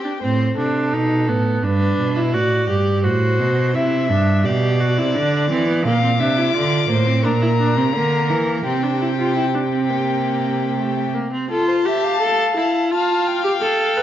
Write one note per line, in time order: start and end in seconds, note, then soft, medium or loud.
0.00 0.21 G4 medium
0.00 0.20 G5 medium
0.05 0.12 D4 medium
0.22 0.55 A2 medium
0.22 0.55 C4 medium
0.22 0.55 C5 medium
0.57 0.94 C3 medium
0.57 0.95 D4 medium
0.57 1.62 A4 medium
0.93 1.30 B2 medium
0.93 1.30 D#4 medium
1.28 1.63 A2 medium
1.28 1.65 B3 medium
1.63 1.98 G2 medium
1.63 2.18 D4 medium
1.63 2.33 B4 medium
1.99 2.35 B2 medium
2.16 2.36 E4 medium
2.34 2.68 A2 medium
2.34 2.69 F#4 medium
2.34 3.03 D5 medium
2.69 3.06 G2 medium
2.69 3.06 G4 medium
3.04 3.41 A2 medium
3.04 3.74 F#4 medium
3.04 3.76 C5 medium
3.40 3.76 B2 medium
3.75 4.12 C3 medium
3.75 4.09 E4 medium
3.75 4.46 E5 medium
4.10 4.47 G2 medium
4.10 4.45 D4 medium
4.45 4.99 B2 medium
4.45 4.82 G4 medium
4.45 5.85 D5 medium
4.80 4.99 F#4 medium
4.98 5.17 C3 medium
4.98 5.17 E4 medium
5.15 5.50 D3 medium
5.15 5.49 D4 medium
5.50 5.87 E3 medium
5.50 5.66 C4 medium
5.67 5.84 B3 medium
5.85 6.21 A#2 medium
5.85 6.02 A#3 medium
5.85 6.21 F5 medium
5.85 7.26 D6 medium
6.02 6.09 C4 medium
6.20 6.55 C3 medium
6.20 6.39 D4 medium
6.20 6.54 E5 medium
6.37 6.56 E4 medium
6.54 6.89 D3 medium
6.54 6.91 F4 medium
6.54 6.89 D5 medium
6.89 7.26 A2 medium
6.89 7.08 A#3 medium
6.89 7.24 C5 medium
7.07 7.24 C4 medium
7.24 7.79 A#2 medium
7.24 7.32 D4 medium
7.24 7.93 A#4 medium
7.24 8.65 A#5 medium
7.42 7.49 E4 medium
7.60 7.77 D4 medium
7.77 7.96 C3 medium
7.77 7.84 C4 medium
7.94 8.31 D3 medium
7.94 8.64 A#3 medium
7.94 8.64 A#4 medium
8.30 8.65 E3 medium
8.65 11.11 C3 medium
8.65 8.85 C4 medium
8.65 11.11 G4 medium
8.65 11.11 G5 medium
8.83 9.00 D4 medium
9.01 9.08 E4 medium
9.18 9.36 F4 medium
9.36 9.44 E4 medium
9.54 9.61 D4 medium
9.72 9.91 C4 medium
9.90 10.78 A#3 medium
10.79 11.16 A3 medium
11.15 11.32 A#3 medium
11.33 11.50 C4 medium
11.50 11.87 F4 medium
11.50 11.67 A4 medium
11.50 12.88 A5 medium
11.68 11.75 C5 medium
11.86 12.20 G4 medium
11.86 12.05 E5 medium
12.04 12.92 F5 medium
12.21 12.56 A4 medium
12.56 12.93 E4 medium
12.91 13.44 F4 medium
12.91 14.03 F5 medium
12.91 13.28 A5 medium
13.27 14.03 G5 medium
13.44 13.51 G4 medium
13.62 13.99 A4 medium
13.97 14.03 B4 medium